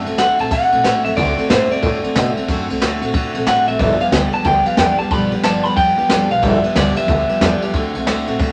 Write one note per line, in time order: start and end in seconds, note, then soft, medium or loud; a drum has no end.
0.00 0.18 A5 loud
0.05 0.17 C2 medium
0.05 0.18 A3 soft
0.05 0.18 C4 medium
0.05 0.18 F#4 medium
0.05 ride medium
0.18 0.37 D2 medium
0.18 0.39 D3 medium
0.18 0.39 A3 medium
0.18 0.39 C4 medium
0.18 0.38 F#4 loud
0.18 0.40 F#5 loud
0.18 snare loud
0.18 ride medium
0.39 0.50 A2 medium
0.39 0.50 A3 soft
0.39 0.51 C4 medium
0.39 0.51 F#4 medium
0.39 0.52 A5 loud
0.39 ride medium
0.51 0.70 C3 loud
0.51 0.72 D3 medium
0.51 0.72 A3 medium
0.51 0.71 C4 medium
0.51 0.70 F#4 medium
0.51 1.02 F#5 loud
0.51 kick loud
0.51 ride loud
0.72 0.83 B2 loud
0.72 0.83 A3 soft
0.72 0.83 C4 medium
0.72 0.84 F#4 medium
0.72 ride medium
0.83 1.03 A2 loud
0.83 1.05 D3 medium
0.83 1.04 A3 medium
0.83 1.04 C4 loud
0.83 1.03 F#4 medium
0.83 snare loud
0.83 ride medium
1.04 1.16 F#2 loud
1.04 1.16 A3 soft
1.04 1.16 C4 medium
1.04 1.17 F#4 medium
1.04 1.10 E5 loud
1.04 ride medium
1.16 1.35 D2 loud
1.16 1.37 D3 medium
1.16 1.38 A3 medium
1.16 1.37 C4 medium
1.16 1.36 F#4 medium
1.16 1.50 D5 medium
1.16 kick loud
1.16 ride medium
1.37 1.48 A3 soft
1.37 1.49 C4 medium
1.37 1.49 F#4 medium
1.37 muted upright bass stroke medium
1.37 ride medium
1.49 1.68 A2 medium
1.49 1.70 D3 medium
1.49 1.70 A3 medium
1.49 1.70 C4 medium
1.49 1.69 F#4 medium
1.49 1.71 C5 loud
1.49 snare loud
1.49 ride medium
1.70 1.82 A3 soft
1.70 1.82 C4 medium
1.70 1.83 F#4 medium
1.70 2.99 D5 medium
1.70 muted upright bass stroke medium
1.70 ride medium
1.82 2.01 A2 medium
1.82 2.03 D3 medium
1.82 2.04 A3 medium
1.82 2.03 C4 medium
1.82 2.02 F#4 medium
1.82 kick loud
1.82 ride medium
2.03 2.15 A3 soft
2.03 2.15 C4 medium
2.03 2.15 F#4 medium
2.03 muted upright bass stroke medium
2.03 ride medium
2.15 2.34 B2 medium
2.15 2.36 D3 loud
2.15 2.37 A3 medium
2.15 2.36 C4 medium
2.15 2.34 F#4 medium
2.15 snare loud
2.15 ride medium
2.36 2.48 A3 soft
2.36 2.49 C4 medium
2.36 2.48 F#4 medium
2.36 muted upright bass stroke medium
2.36 ride medium
2.48 2.67 F#2 loud
2.48 2.69 D3 medium
2.48 2.70 A3 medium
2.48 2.69 C4 medium
2.48 2.68 F#4 loud
2.48 kick loud
2.48 ride medium
2.69 2.80 C2 medium
2.69 2.80 A3 medium
2.69 2.80 C4 medium
2.69 2.81 F#4 medium
2.69 ride medium
2.80 3.00 D2 medium
2.80 3.02 D3 medium
2.80 3.02 A3 medium
2.80 3.02 C4 medium
2.80 3.00 F#4 medium
2.80 snare loud
2.80 ride medium
3.02 3.12 A2 medium
3.02 3.13 A3 medium
3.02 3.14 C4 medium
3.02 3.14 F#4 medium
3.02 ride medium
3.14 3.32 C3 medium
3.14 3.35 D3 medium
3.14 3.35 A3 medium
3.14 3.35 C4 medium
3.14 3.34 F#4 medium
3.14 kick loud
3.14 ride loud
3.34 3.45 B2 medium
3.34 3.46 A3 medium
3.34 3.46 C4 medium
3.34 3.47 F#4 medium
3.34 ride medium
3.46 3.65 A2 medium
3.46 3.68 D3 medium
3.46 3.68 A3 medium
3.46 3.67 C4 medium
3.46 3.66 F#4 loud
3.46 3.67 F#5 loud
3.46 snare loud
3.46 ride medium
3.67 3.78 A1 medium
3.67 3.79 A3 soft
3.67 3.80 C4 medium
3.67 3.79 F#4 medium
3.67 3.78 E5 medium
3.67 ride medium
3.79 3.98 G1 loud
3.79 4.00 G2 medium
3.79 4.00 D3 medium
3.79 4.00 F3 medium
3.79 4.00 G3 medium
3.79 3.99 B3 medium
3.79 3.98 G4 medium
3.79 4.01 E5 loud
3.79 kick loud
3.79 ride medium
3.99 4.11 F3 soft
3.99 4.12 G3 soft
3.99 4.12 B3 medium
3.99 4.12 G4 medium
3.99 4.06 F5 medium
3.99 muted upright bass stroke medium
3.99 ride medium
4.12 4.31 D2 medium
4.12 4.33 G2 medium
4.12 4.33 D3 medium
4.12 4.33 F3 medium
4.12 4.33 G3 medium
4.12 4.32 B3 medium
4.12 4.31 G4 medium
4.12 4.33 G5 loud
4.12 snare loud
4.12 ride medium
4.33 4.43 F3 soft
4.33 4.44 G3 soft
4.33 4.44 B3 soft
4.33 4.45 G4 medium
4.33 4.46 A5 loud
4.33 ride medium
4.44 4.63 D2 medium
4.44 4.65 F3 medium
4.44 4.65 G3 medium
4.44 4.65 B3 medium
4.44 4.64 G4 medium
4.44 4.66 G5 loud
4.44 kick loud
4.44 ride medium
4.65 4.77 F3 soft
4.65 4.77 G3 medium
4.65 4.78 B3 medium
4.65 4.78 G4 medium
4.65 4.77 F5 loud
4.65 muted upright bass stroke medium
4.65 ride medium
4.77 4.96 E2 loud
4.77 4.99 G2 medium
4.77 4.99 D3 medium
4.77 4.99 F3 medium
4.77 4.99 G3 medium
4.77 4.99 B3 loud
4.77 4.98 G4 loud
4.77 4.97 G5 loud
4.77 snare loud
4.77 ride medium
4.98 5.11 F3 soft
4.98 5.12 G3 medium
4.98 5.11 B3 medium
4.98 5.11 G4 medium
4.98 5.11 A5 loud
4.98 muted upright bass stroke medium
4.98 ride medium
5.11 5.29 B1 loud
5.11 5.32 G2 medium
5.11 5.32 D3 medium
5.11 5.32 F3 medium
5.11 5.32 G3 medium
5.11 5.31 B3 loud
5.11 5.30 G4 medium
5.11 5.44 B5 loud
5.11 kick loud
5.11 ride medium
5.31 5.42 F1 medium
5.31 5.43 F3 soft
5.31 5.43 G3 soft
5.31 5.44 B3 medium
5.31 5.44 G4 medium
5.31 ride medium
5.43 5.62 G1 medium
5.43 5.65 G2 medium
5.43 5.65 D3 medium
5.43 5.65 F3 medium
5.43 5.65 G3 medium
5.43 5.64 B3 medium
5.43 5.63 G4 medium
5.43 5.64 A5 loud
5.43 snare loud
5.43 ride medium
5.64 5.75 D2 medium
5.64 5.75 F3 soft
5.64 5.75 G3 soft
5.64 5.76 B3 medium
5.64 5.77 G4 medium
5.64 5.76 B5 loud
5.64 ride medium
5.76 5.95 F2 loud
5.76 5.97 F3 medium
5.76 5.97 G3 medium
5.76 5.97 B3 medium
5.76 5.96 G4 medium
5.76 6.31 G5 loud
5.76 kick loud
5.76 ride medium
5.97 6.08 E2 loud
5.97 6.09 F3 soft
5.97 6.09 G3 soft
5.97 6.09 B3 medium
5.97 6.09 G4 medium
5.97 ride medium
6.09 6.28 D2 loud
6.09 6.30 G2 medium
6.09 6.30 D3 medium
6.09 6.30 F3 medium
6.09 6.30 G3 medium
6.09 6.29 B3 medium
6.09 6.28 G4 medium
6.09 snare loud
6.09 ride medium
6.30 6.41 B1 loud
6.30 6.41 F3 soft
6.30 6.42 G3 medium
6.30 6.42 B3 medium
6.30 6.42 G4 medium
6.30 6.44 F5 medium
6.30 ride medium
6.42 6.61 G1 loud
6.42 6.63 G2 medium
6.42 6.63 D3 medium
6.42 6.63 F3 medium
6.42 6.63 G3 medium
6.42 6.63 B3 medium
6.42 6.62 G4 medium
6.42 6.76 E5 loud
6.42 kick loud
6.42 ride medium
6.63 6.75 F3 soft
6.63 6.75 G3 soft
6.63 6.75 B3 medium
6.63 6.75 G4 medium
6.63 muted upright bass stroke medium
6.63 ride medium
6.75 6.94 D2 medium
6.75 6.96 G2 medium
6.75 6.96 D3 medium
6.75 6.96 F3 medium
6.75 6.97 G3 medium
6.75 6.95 B3 medium
6.75 6.95 G4 medium
6.75 6.95 D5 medium
6.75 snare loud
6.75 ride loud
6.96 7.06 F3 medium
6.96 7.07 G3 medium
6.96 7.08 B3 medium
6.96 7.08 G4 medium
6.96 8.24 E5 medium
6.96 muted upright bass stroke medium
6.96 ride medium
7.08 7.27 D2 medium
7.08 7.29 F3 medium
7.08 7.29 G3 medium
7.08 7.28 B3 medium
7.08 7.27 G4 medium
7.08 kick loud
7.08 ride medium
7.28 7.40 F3 medium
7.28 7.41 G3 soft
7.28 7.41 B3 medium
7.28 7.41 G4 medium
7.28 muted upright bass stroke medium
7.28 ride medium
7.41 7.59 E2 loud
7.41 7.62 G2 loud
7.41 7.62 D3 medium
7.41 7.62 F3 medium
7.41 7.62 G3 loud
7.41 7.62 B3 loud
7.41 7.61 G4 loud
7.41 snare loud
7.41 ride medium
7.62 7.74 F3 medium
7.62 7.75 G3 medium
7.62 7.75 B3 medium
7.62 7.74 G4 medium
7.62 muted upright bass stroke medium
7.62 ride medium
7.74 7.92 D2 loud
7.74 7.95 D3 medium
7.74 7.96 A3 loud
7.74 7.96 C4 loud
7.74 7.95 F#4 loud
7.74 kick loud
7.74 ride medium
7.94 8.05 C2 medium
7.94 8.07 A3 medium
7.94 8.07 C4 medium
7.94 8.07 F#4 medium
7.94 ride medium
8.06 8.25 D2 medium
8.06 8.28 D3 medium
8.06 8.28 A3 loud
8.06 8.28 C4 medium
8.06 8.26 F#4 medium
8.06 snare loud
8.06 ride medium
8.27 8.38 A2 medium
8.27 8.40 A3 medium
8.27 8.40 C4 medium
8.27 8.40 F#4 medium
8.27 ride medium
8.40 8.52 C3 medium
8.40 8.52 D3 medium
8.40 8.52 A3 medium
8.40 8.52 C4 medium
8.40 8.52 F#4 medium
8.40 kick loud
8.40 ride medium